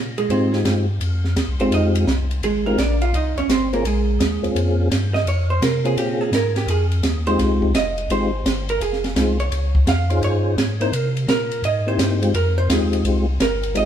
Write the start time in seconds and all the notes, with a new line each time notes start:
Already playing: A#2
0.18 G#3 G#4, ride
0.29 G#2 G#3 C4 D#4 F4 G4 C5, ride
0.53 snare
0.65 G2 G#3 C4 D#4 F4 G4, snare, hi-hat pedal, ride
1.00 F2, ride
1.24 snare
1.35 D#2, snare, hi-hat pedal, ride
1.48 C2
1.59 G#1 G#3 C4 D#4 F4 G4 C5, ride
1.71 F2 D#4 D#5, ride
1.95 ride
2.07 C2, snare, hi-hat pedal
2.31 ride
2.42 G#1 G#3 G#4, ride
2.66 G#3 A#3 C4 D#4 F4 G4 A#4
2.78 A#1 D4 D5, snare, hi-hat pedal, ride
3.01 F4 F5, ride
3.13 C2 D#4 D#5, ride
3.36 C2 C#4 C#5, ride
3.48 G1 C4 C5, snare, hi-hat pedal, ride
3.73 A#3 C4 C#4 F4 G#4 A#4, ride
3.84 A#1 G#3 G#4, ride
4.19 D#2, snare, hi-hat pedal, ride
4.43 D#2 A#3 C4 C#4 F4 G#4, ride
4.55 F2, ride
4.90 G2, snare, hi-hat pedal, ride
5.14 D#5, snare
5.26 F2 C#5, ride
5.50 C5
5.62 C3 A#4, snare, hi-hat pedal, ride
5.84 A#3 C4 C#4 F4 G#4, ride
5.96 A#2 G4, ride
6.21 G#4
6.32 G#2 A#4, snare, hi-hat pedal, ride
6.56 G4, snare, ride
6.67 F2 G#4, ride
6.92 ride
7.03 D#2, snare, hi-hat pedal, ride
7.27 G#3 C4 D#4 F4 G4 C5, ride
7.39 C2, snare, ride
7.62 kick
7.74 F1 D#5, snare, hi-hat pedal, ride
7.98 ride
8.09 G#1 G#3 C4 D#4 F4 G4 C5, ride
8.45 G1, snare, hi-hat pedal, ride
8.69 A#4, ride
8.81 F1 G#4, ride
8.93 snare
9.04 snare, ride
9.15 C2 G#3 C4 D#4 F4 G#4, snare, hi-hat pedal, ride
9.40 C#5, ride
9.51 C#2, ride
9.75 kick
9.86 F2 F5, snare, hi-hat pedal, ride
10.10 C#4 D#4 F4 G#4 C5, ride
10.22 G2 C#5, ride
10.57 G#2, snare, hi-hat pedal, ride
10.80 A#3 C4 D#4 E4 A#4 C5, ride
10.92 C3 A#4, ride
11.17 ride
11.27 A#2 A#4, snare, hi-hat pedal, ride
11.51 ride
11.63 G#2 D#5, ride
11.86 A#3 C4 D#4 E4 G4 C5
11.98 G2, snare, hi-hat pedal, ride
12.21 G#3 C4 D#4 F4 G4, ride
12.34 F2 A#4, ride
12.58 C5
12.69 D#2 G#3 C4 D#4 F4 G4, snare, hi-hat pedal, ride
12.93 ride
13.04 C2 G#3 C4 D#4 F4 G4, ride
13.40 G1 A#4, snare, hi-hat pedal, ride
13.63 ride
13.74 G#1 G#3 C4 D#4 F4 G4 D#5, ride